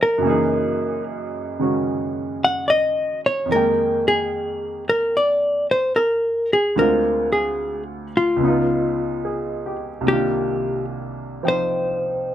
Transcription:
Already playing: D#2 D#3 F3 A#3 D#4 F4 G4
0.03 A#4
0.18 F#2 C#3
0.23 E3 A#3
0.27 D#4 G#4
1.59 C#3 D#3 G#3 C#4 F#4
2.44 F#5
2.68 D5 D#5
3.26 C#5
3.46 F2 D#3
3.51 G#3 A#3 A#4
3.56 G5
4.08 G#4
4.89 A#4
5.17 D5
5.71 C5
5.96 A4 A#4
6.53 G#4
6.76 D2 D3 G#3 C4 A#4
6.81 F4
7.33 G#4
8.17 F4
8.36 C#2 C#3
8.42 B3 D#4
8.47 F4
9.25 G#4
9.66 G4
10.01 C2 C3
10.06 D#3 A#3 D4 G4
10.13 F4
11.43 F3 C4 D#4 F4 G5
11.48 C5

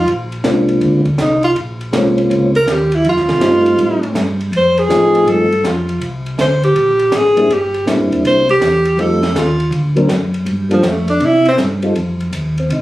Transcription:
0.07 A#1, ride
0.32 ride
0.44 C2 G#3 A#3 C4 D4 F4, snare, hi-hat pedal, ride
0.69 ride
0.81 D2, ride
1.05 kick, ride
1.18 C2 D#4, snare, hi-hat pedal, ride
1.43 F4, ride
1.56 A#1, ride
1.81 ride
1.93 C2 G#3 A#3 C4 C#4 F4, snare, hi-hat pedal, ride
2.18 ride
2.30 C#2, ride
2.55 A#4, ride
2.67 D#2, snare, hi-hat pedal, ride
2.72 G4
2.92 E4, ride
3.04 F2, ride
3.09 F4
3.17 D#2, snare
3.29 C2, snare, ride
3.41 G2 G3 A3 C4 D#4 F4, snare, hi-hat pedal, ride
3.66 ride
3.78 A2, ride
4.03 ride
4.15 G2, snare, hi-hat pedal, ride
4.41 ride
4.52 F2, ride
4.57 C5
4.78 G#4, ride
4.89 A2 F3 A3 C4 D#4 F4, snare, hi-hat pedal, ride
5.15 ride
5.27 G2 A4, ride
5.52 ride
5.64 F2 F4, snare, hi-hat pedal, ride
5.89 ride
6.01 C2, ride
6.26 ride
6.38 D2 C5, snare, hi-hat pedal, ride
6.63 G4, ride
6.75 A#1, ride
6.99 ride
7.12 A1 G#4, snare, hi-hat pedal, ride
7.36 G3 A#3 C4 D4 E4, ride
7.50 G1 G4, ride
7.74 ride
7.86 A#1 G3 A#3 C4 D4 E4, snare, hi-hat pedal, ride
7.98 G1
8.11 E1, ride
8.23 C2 C5, ride
8.49 G4, ride
8.61 E2, snare, hi-hat pedal, ride
8.85 ride
8.97 F2 G3 A3 C4 D#4 F4 A4, ride
9.23 snare, ride
9.34 D#2, snare, hi-hat pedal, ride
9.38 F4
9.60 ride
9.71 D2, ride
9.96 F#3 A#3 C4 D4 A#4, ride
10.09 F#2, snare, hi-hat pedal, ride
10.34 ride
10.46 G2, ride
10.69 F3 G3 A#3 D4 F4 A4, ride
10.83 F2, snare, hi-hat pedal, ride
10.87 A3
11.08 D4, ride
11.20 C3, ride
11.25 E4
11.45 C4, ride
11.58 G2, snare, hi-hat pedal, ride
11.82 G3 C4 D#4 F4 A4, ride
11.95 F2, ride
12.20 ride
12.33 D#2, hi-hat pedal, ride
12.58 C4, ride
12.70 C2 D#4, ride

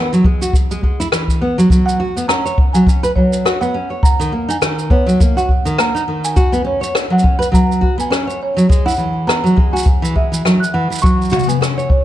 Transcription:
Already playing: B3
0.13 F#3, shaker
0.24 G#3, kick
0.42 F#4, shaker
0.53 kick, shaker
0.71 G#3, shaker
0.83 G#3, kick
1.00 E4, shaker
1.12 E3, cross-stick, shaker
1.28 kick, shaker
1.41 B3
1.58 F#3, shaker
1.70 F#3, kick, shaker
1.86 F#5, shaker
2.00 F#4
2.17 B3, shaker
2.28 C#4 A#5, cross-stick, shaker
2.45 C#5, shaker
2.58 kick
2.73 F#3 G#5, shaker
2.87 C#4, kick, shaker
3.03 B4, shaker
3.16 F#3 C#5, kick
3.33 shaker
3.45 F#4, cross-stick, shaker
3.61 B3 F#5, shaker
3.74 C#4
3.90 C#5
4.03 A#5, kick, shaker
4.20 D#3, shaker
4.32 A#3
4.49 D#4 G#5, shaker
4.62 D#3, cross-stick, shaker
4.79 shaker
4.90 B3 C#5, kick
5.07 F#3, shaker
5.20 A#3, kick, shaker
5.37 F#4 F#5, shaker
5.49 kick
5.65 D#3, shaker
5.78 A#3 A#5, cross-stick, shaker
5.95 D#4, shaker
6.08 D#3
6.25 G#5, shaker
6.36 F#4, kick, shaker
6.52 B3, shaker
6.64 C#4 C#5
6.81 C#5, shaker
6.95 cross-stick, shaker
7.10 F#3 F#5
7.19 C#4, shaker
7.24 kick
7.39 B4, shaker
7.52 F#3 A#5, kick, shaker
7.72 shaker
7.81 F#4, kick
7.98 B3 G#5, shaker
8.10 C#4, cross-stick, shaker
8.27 C#5, shaker
8.43 C#5
8.57 F#3, shaker
8.69 G#3, kick, shaker
8.86 E4 F#5, shaker
8.90 shaker
8.94 shaker
8.96 E3, shaker
8.99 shaker
9.27 B3 A#5, cross-stick, shaker
9.44 F#3, shaker
9.56 G#3, kick
9.73 F#4 G#5, shaker
9.78 shaker
9.82 kick, shaker
10.02 E3, shaker
10.15 G#3 E5, kick
10.32 E3, shaker
10.45 F#3, cross-stick, shaker
10.60 F#6, shaker
10.73 E3 F#5
10.90 E3, shaker
10.95 shaker
10.98 shaker
11.01 F#3 C#6, kick, shaker
11.06 shaker
11.22 shaker
11.25 shaker
11.30 F#4, mid tom, shaker
11.34 shaker
11.39 shaker
11.43 shaker
11.47 B3 G#5, shaker
11.61 C#4, cross-stick, shaker
11.78 C#5, shaker
11.89 C#5, kick

